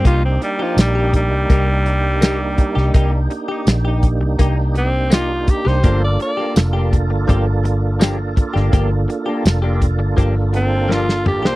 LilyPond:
<<
  \new Staff \with { instrumentName = "Tenor saxophone" } { \time 4/4 \key g \minor \tempo 4 = 83 f'16 c'16 g16 f16 g8 g2~ g8~ | g8 r2 c'8 f'8 g'16 c''16~ | c''16 d''16 d''8 r2. | r2 r8 c'8 f'8 g'16 c''16 | }
  \new Staff \with { instrumentName = "Clean electric guitar" } { \time 4/4 \key g \minor <bes ees' g'>16 r8 <ees' g'>16 r16 <ees' g'>16 r8 <bes ees' g'>16 r8. <bes ees' g'>16 r8 <ees' g'>16 | <bes ees' g'>16 r8 <ees' g'>16 r16 <ees' g'>16 r8 <bes ees' g'>16 r8. <bes ees' g'>16 r8 <ees' g'>16 | <f bes d' g'>16 r8 <bes d' g'>16 r16 <bes d' g'>16 r8 <f bes d' g'>16 r8. <f bes d' g'>16 r8 <bes d' g'>16 | <f bes d' g'>16 r8 <bes d' g'>16 r16 <bes d' g'>16 r8 <f bes d' g'>16 r8. <f bes d' g'>16 r8 <bes d' g'>16 | }
  \new Staff \with { instrumentName = "Tonewheel organ" } { \time 4/4 \key g \minor <bes d' ees' g'>1~ | <bes d' ees' g'>1 | <bes d' f' a'>1~ | <bes d' f' a'>1 | }
  \new Staff \with { instrumentName = "Fingered electric bass" } { \clef bass \time 4/4 \key g \minor c,8 r8 bes,,8. c,16 c,4.~ c,16 c,16 | c,8 r8 bes,,8. c,16 c,4.~ c,16 c,16 | g,,8 r8 f,,8. g,,16 g,,4.~ g,,16 g,,16 | g,,8 r8 f,,8. g,,16 g,,4.~ g,,16 c,16 | }
  \new DrumStaff \with { instrumentName = "Drums" } \drummode { \time 4/4 <hh bd>8 hh8 <hh sn tamb>8 <hh bd>8 <hh bd>8 hh8 <hh sn tamb>8 <hh bd>16 sn16 | <hh bd>8 hh8 <hh sn tamb>8 <hh bd>8 <hh bd>8 hh8 <hh sn tamb>8 <hh bd>16 sn16 | <hh bd>8 hh8 <hh sn tamb>8 <hh bd>8 <hh bd>8 hh8 <hh sn tamb>8 <hh bd>16 sn16 | <hh bd>8 hh8 <hh sn tamb>8 <hh bd>8 <hh bd>8 hh8 sn16 sn16 toml16 sn16 | }
>>